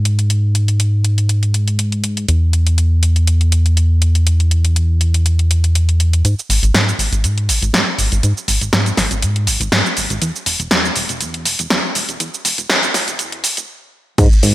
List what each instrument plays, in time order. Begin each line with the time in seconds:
Already playing: analog synth bass G#2
0.05 closed hi-hat
0.19 closed hi-hat
0.30 closed hi-hat
0.55 closed hi-hat
0.68 closed hi-hat
0.80 closed hi-hat
1.05 closed hi-hat
1.18 closed hi-hat
1.29 closed hi-hat
1.43 closed hi-hat
1.54 closed hi-hat
1.68 closed hi-hat
1.79 closed hi-hat
1.92 closed hi-hat
2.04 closed hi-hat
2.17 closed hi-hat
2.29 analog synth bass E2, closed hi-hat
2.53 closed hi-hat
2.67 closed hi-hat
2.78 closed hi-hat
3.03 closed hi-hat
3.16 closed hi-hat
3.27 closed hi-hat
3.41 closed hi-hat
3.52 closed hi-hat
3.66 closed hi-hat
3.77 closed hi-hat
4.02 closed hi-hat
4.15 closed hi-hat
4.27 closed hi-hat
4.40 closed hi-hat
4.51 closed hi-hat
4.65 closed hi-hat
4.76 closed hi-hat
5.01 closed hi-hat
5.14 closed hi-hat
5.26 closed hi-hat
5.39 closed hi-hat
5.51 closed hi-hat
5.64 closed hi-hat
5.75 closed hi-hat
5.89 closed hi-hat
6.00 closed hi-hat
6.13 closed hi-hat
6.25 analog synth bass G#2, closed hi-hat, shaker
6.39 shaker
6.49 analog synth bass G#1, open hi-hat, shaker
6.63 analog synth bass G#1, closed hi-hat, shaker
6.74 analog synth bass G#2, snare, closed hi-hat, shaker
6.89 shaker
6.99 analog synth bass G#1, open hi-hat, shaker
7.12 analog synth bass G#1, closed hi-hat, shaker
7.24 analog synth bass G#2, closed hi-hat, shaker
7.38 closed hi-hat
7.49 analog synth bass G#1, open hi-hat, shaker
7.62 analog synth bass G#1, closed hi-hat, shaker
7.73 analog synth bass G#2, snare, closed hi-hat, shaker
7.98 analog synth bass G#1, open hi-hat, shaker
8.12 analog synth bass G#1, closed hi-hat, shaker
8.23 analog synth bass G#2, closed hi-hat, shaker
8.37 shaker
8.48 analog synth bass G#1, open hi-hat, shaker
8.61 analog synth bass G#1, closed hi-hat, shaker
8.73 analog synth bass G#2, snare, closed hi-hat, shaker
8.86 closed hi-hat, shaker
8.97 analog synth bass G#1, snare, open hi-hat, shaker
9.11 analog synth bass G#1, closed hi-hat, shaker
9.22 analog synth bass G#2, closed hi-hat, shaker
9.36 closed hi-hat
9.47 analog synth bass G#1, open hi-hat, shaker
9.60 analog synth bass G#1, closed hi-hat, shaker
9.72 analog synth bass G#2, snare, closed hi-hat, shaker
9.86 shaker
9.97 analog synth bass G#1, open hi-hat, shaker
10.10 analog synth bass G#1, closed hi-hat, shaker
10.22 analog synth bass E2, closed hi-hat, shaker
10.36 shaker
10.46 analog synth bass E1, open hi-hat, shaker
10.60 analog synth bass E1, closed hi-hat, shaker
10.71 analog synth bass E2, snare, closed hi-hat, shaker
10.85 shaker
10.96 analog synth bass E1, open hi-hat, shaker
11.09 analog synth bass E1, closed hi-hat, shaker
11.21 analog synth bass E2, closed hi-hat, shaker
11.34 closed hi-hat
11.46 analog synth bass E1, open hi-hat, shaker
11.59 analog synth bass E1, closed hi-hat, shaker
11.70 analog synth bass E2, snare, closed hi-hat, shaker
11.95 analog synth bass E1, open hi-hat, shaker
12.09 analog synth bass E1, closed hi-hat, shaker
12.20 analog synth bass E2, closed hi-hat, shaker
12.34 shaker
12.45 analog synth bass E1, open hi-hat, shaker
12.58 analog synth bass E1, closed hi-hat, shaker
12.69 analog synth bass E2, snare, closed hi-hat, shaker
12.83 closed hi-hat, shaker
12.94 analog synth bass E1, snare, open hi-hat, shaker
13.08 analog synth bass E1, closed hi-hat, shaker
13.19 analog synth bass E2, closed hi-hat, shaker
13.32 closed hi-hat
13.44 analog synth bass E1, open hi-hat, shaker
13.57 analog synth bass E1, closed hi-hat, shaker
14.18 analog synth bass G#2, kick, closed hi-hat, crash, shaker
14.32 shaker
14.43 analog synth bass G#1, open hi-hat, shaker